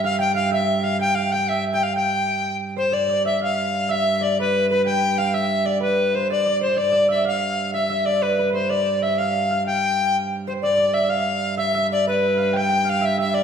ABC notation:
X:1
M:6/8
L:1/16
Q:3/8=125
K:Gmix
V:1 name="Harp"
f2 g2 f2 e4 f2 | g2 f2 g2 e2 z g3 | g8 z2 c2 | d2 d2 e2 f6 |
e4 d2 B4 B2 | g4 f2 e4 d2 | B4 c2 d2 d2 c2 | d2 d2 e2 f6 |
e2 e2 d2 B2 B2 c2 | d4 e2 f4 f2 | g8- g2 c2 | d2 d2 e2 f6 |
e2 e4 B4 f2 | g2 g2 f2 e2 e2 d2 |]
V:2 name="Recorder"
f2 g2 f2 e4 f2 | g2 f2 g2 e2 z g f2 | g8 z2 c2 | d4 e2 f6 |
e4 d2 B4 B2 | g4 f2 e4 d2 | B4 c2 d4 c2 | d4 e2 f6 |
e4 d2 B4 c2 | d4 e2 f6 | g8- g2 c2 | d4 e2 f6 |
e4 d2 B6 | g4 f2 e2 e2 d2 |]
V:3 name="Viola da gamba" clef=bass
G,,12- | G,,12- | G,,12 | G,,12- |
G,,12- | G,,12- | G,,12 | G,,12- |
G,,12- | G,,12- | G,,12 | G,,12- |
G,,12- | G,,12 |]